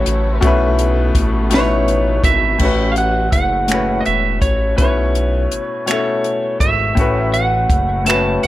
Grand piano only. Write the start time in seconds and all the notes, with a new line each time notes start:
Already playing: A2 A3 C#4 F#4 A4 B4
0.41 B2 A3 C#4
0.45 E4 B4
1.50 B2 A3 C#4
1.54 D#4 B4
1.61 E4
2.58 A2 A3 C#4
2.63 F#4 B4
3.68 A2 A3 C#4
3.72 F#4 B4
4.76 B2 A3 C#4
4.81 E4 B4
5.86 B2 A3 C#4
5.91 E4 A4
6.95 A2 A3 C#4
6.99 F#4 B4
8.04 A2 A3 B3
8.09 F#4 B4
8.14 C#4